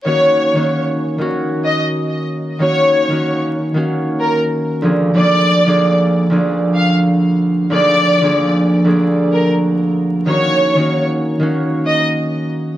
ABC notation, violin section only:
X:1
M:4/4
L:1/16
Q:"Swing 16ths" 1/4=94
K:Ebm
V:1 name="Violin section"
d4- d z4 z e z4 z | d4- d z4 z B z4 z | =d4- d z4 z f z4 z | =d4- d z4 z B z4 z |
d4- d z4 z e z4 z |]